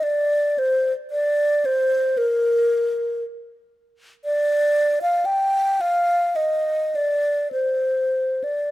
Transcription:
X:1
M:4/4
L:1/16
Q:1/4=56
K:Dphr
V:1 name="Alto flute"
d2 c z d2 c2 B4 z4 | [K:Cdor] d3 f g2 f2 e2 d2 c3 d |]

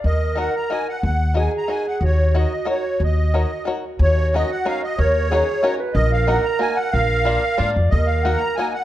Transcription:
X:1
M:3/4
L:1/8
Q:1/4=183
K:Ebm
V:1 name="Accordion"
e2 g b a g | g2 a b a g | d2 e2 d2 | e4 z2 |
d2 e g f e | d4- d z | e f g b a g | f4- f z |
e f g b a g |]
V:2 name="Clarinet"
B6 | z2 A4 | G6- | G4 G2 |
G6 | B2 A2 G c | B6 | B4 =d2 |
B6 |]
V:3 name="Five-string banjo"
z2 [EGBe] z [EGBe] z | z2 [EGBe] z [EGBe] z | z2 [EGBd] z [EGBd] z | z2 [EGBd] z [EGBd] z |
z2 [DEGBd] z [DEGBd] z | z2 [DEGBd] z [DEGBd] z | z2 [B,EGBe] z [B,EGBe] z | z2 [B,=DFB=d] z [B,DFBd] z |
z2 [B,EGBe] z [B,EGBe] z |]
V:4 name="Upright bass" clef=bass
E,,4 z2 | E,,4 z2 | E,,4 z2 | E,,4 z2 |
E,,4 z2 | E,,4 z2 | B,,,4 z2 | B,,,4 A,, F,, |
E,,4 z2 |]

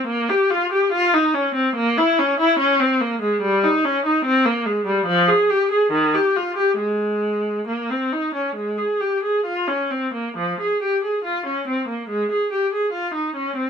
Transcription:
X:1
M:4/4
L:1/16
Q:1/4=71
K:Cphr
V:1 name="Viola"
B, G F G F E D C B, =E D E D C B, A, | [K:Ab] G, E D E C B, A, G, F, A G A E, G F G | A,4 B, C E D A, A G A F D C B, | [K:Fm] F, A G A F D C B, A, A G A F E D C |]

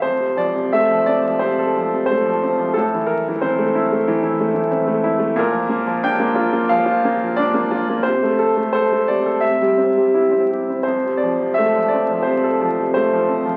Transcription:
X:1
M:4/4
L:1/16
Q:1/4=89
K:F
V:1 name="Upright piano"
c2 d2 e2 d2 c4 c4 | A2 B2 c8- c2 z2 | B4 g4 f4 d4 | c4 c2 d2 e6 z2 |
c2 d2 e2 d2 c4 c4 |]
V:2 name="Upright piano"
F,, C, F, C, A, F, C F, C, A F, C, A, F, C F, | A,, E,2 E, C A, E A, E, E A, E, C A, E A, | B,, F, B, F, D B, F B, F, F B, F, D B, F B, | C, A, A A, A A, C, A C, G, C G, E C G C |
F,, C, F, C, A, F, C F, C, A F, C, A, F, C F, |]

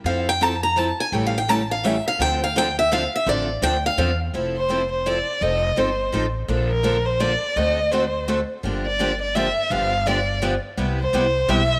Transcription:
X:1
M:3/4
L:1/16
Q:"Swing" 1/4=168
K:Dm
V:1 name="Steel-string acoustic guitar"
f2 g2 a2 b2 a2 ^g2 | (3g2 f2 g2 a2 f2 e2 f2 | g2 f2 g2 e2 f2 e2 | d4 g2 f4 z2 |
z12 | z12 | z12 | z12 |
z12 | z12 | z12 |]
V:2 name="Violin"
z12 | z12 | z12 | z12 |
z2 c4 c2 d4 | _e4 c4 z4 | z2 B4 c2 d4 | _e4 c4 z4 |
z2 d4 d2 e4 | f4 d4 z4 | z2 c6 e2 z2 |]
V:3 name="Steel-string acoustic guitar"
[F,CEA]2 z2 [F,CEA] z3 [F,CEA] z3 | [^C,E,A,^CG]2 z2 [C,E,A,CG] z3 [C,E,A,CG] z3 | [D,F,CDA]2 z2 [D,F,CDA] z3 [D,F,CDA] z3 | [D,F,CDA]2 z2 [D,F,CDA] z3 [D,F,CDA] z3 |
[F,CEA]2 z2 [F,CEA] z3 [F,CEA] z3 | [F,C_EA]2 z2 [F,CEA] z3 [F,CEA] z3 | [D,F,B,DA]2 z2 [D,F,B,DA] z3 [D,F,B,DA] z3 | [D,A,C^FA]2 z2 [D,A,CFA] z3 [D,A,CFA] z3 |
[D,F,B,DG]2 z2 [D,F,B,DG] z3 [D,F,B,DG] z3 | [D,F,=B,DG]2 z2 [D,F,B,DG] z3 [D,F,B,DG] z3 | [C,G,=B,EG]2 z2 [C,G,B,EG] z3 [C,G,B,EG] z3 |]
V:4 name="Steel-string acoustic guitar"
[F,CEA]2 z2 [F,CEA] z3 [F,CEA] z3 | [E,G,^CEA]2 z2 [E,G,CEA] z3 [E,G,CEA] z3 | [D,F,CDA]2 z2 [D,F,CDA] z3 [D,F,CDA] z3 | [D,F,CDA]2 z2 [D,F,CDA] z3 [D,F,CDA] z3 |
[F,CEA]2 z2 [F,CEA] z3 [F,CEA] z3 | [F,C_EA]2 z2 [F,CEA] z3 [F,CEA] z3 | [D,F,B,DA]2 z2 [D,F,B,DA] z3 [D,F,B,DA] z3 | [D,A,C^FA]2 z2 [D,A,CFA] z3 [D,A,CFA] z3 |
[D,F,B,DG]2 z2 [D,F,B,DG] z3 [D,F,B,DG] z3 | [D,F,=B,DG]2 z2 [D,F,B,DG] z3 [D,F,B,DG] z3 | [C,G,=B,EG]2 z2 [C,G,B,EG] z3 [C,G,B,EG] z3 |]
V:5 name="Upright bass" clef=bass
F,,12 | A,,,12 | D,,12 | A,,,4 D,,4 E,,4 |
F,,,12 | F,,,4 G,,,4 A,,,4 | B,,,12 | D,,12 |
G,,,12 | G,,,12 | C,,4 C,,4 =B,,,4 |]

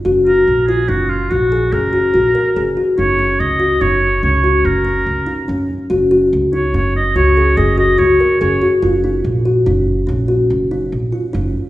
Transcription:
X:1
M:7/4
L:1/16
Q:1/4=144
K:F#
V:1 name="Oboe"
z2 A4 G2 F2 E2 F4 A8- A2 z2 | c4 d4 c4 c4 A8 z4 | z6 c2 c2 d2 c4 d2 d2 c4 c3 z | z24 z4 |]
V:2 name="Kalimba"
F2 F4 E2 D4 F2 G2 G2 F2 F2 A2 G2 F2 | D2 C4 F2 D4 C2 F4 C4 D2 C4 | F2 F4 D2 C4 F2 G2 G2 F2 F2 A2 G2 F2 | E2 D4 F2 D4 C2 F4 D4 E2 D4 |]
V:3 name="Upright bass" clef=bass
F,,,4 A,,,4 F,,,4 A,,,4 F,,,4 A,,,2 z2 F,,,2 z2 | F,,,4 C,,4 F,,,4 C,,4 F,,,4 C,,2 z2 F,,,2 z2 | F,,,4 C,,4 F,,,4 C,,4 F,,,4 C,,2 z2 F,,,2 z2 | F,,,4 A,,,4 F,,,4 A,,,4 F,,,4 A,,,2 z2 F,,,2 z2 |]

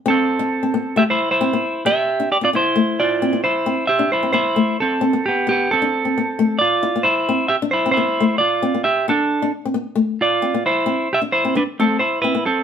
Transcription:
X:1
M:4/4
L:1/16
Q:1/4=133
K:C
V:1 name="Clean electric guitar"
[CA]8 [Ge] [Ec]2 [Ec]4- [Ec] | [Ge]4 [Gd] [Fd] [Ec]4 [Fd]4 [Ec]2- | [Ec]2 [Ge]2 [Ec]2 [Ec]4 [CA]4 [B,G]2 | [B,G]2 [CA]8 [Fd]4 [Ec]2- |
[Ec]2 [Ge]2 [Ec]2 [Ec]4 [Fd]4 [Ge]2 | [DA]4 z6 [Fd]4 [Ec]2- | [Ec]2 [Ge]2 [Ec]2 [DB]2 [CA]2 [Ec]2 [EB]2 [CA]2 |]
V:2 name="Nylon-string guitar"
C2 z3 C B,2 A,2 z2 C B,2 z | z3 D2 C B,2 A,2 z2 C B,2 z | C2 z D2 C B,2 A,2 z2 C B,2 z | B,2 z D2 C B,2 A,2 z2 E B,2 z |
C2 z D2 C B,2 A,2 z2 C B,2 z | B,2 z D2 C B,2 A,2 z2 C B,2 z | C2 z D2 C B,2 A,2 z2 C B,2 z |]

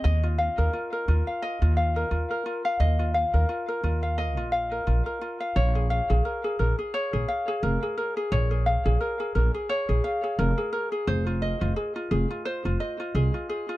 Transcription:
X:1
M:4/4
L:1/16
Q:"Swing 16ths" 1/4=87
K:Bbdor
V:1 name="Ukulele"
e F f B F B F f e F f B F B F f | e F f B F B F f e F f B F B F f | d A f A B A B A d A f A B A B A | d A f A B A B A d A f A B A B A |
c F e F A F A F c F e F A F A F |]
V:2 name="Upright bass" clef=bass
E,,2 z E,, z2 E,, z2 E,,2 z E,, z3 | E,,2 z E,, z2 E,,3 B,,,2 z B,,, z3 | B,,,2 z B,,, z2 B,,, z2 B,,, z2 F,,, z3 | B,,,2 z B,,, z2 B,,, z2 B,,, z2 F,,, z3 |
F,,,2 z F,,, z2 F,,, z2 F,,, z2 C,, z3 |]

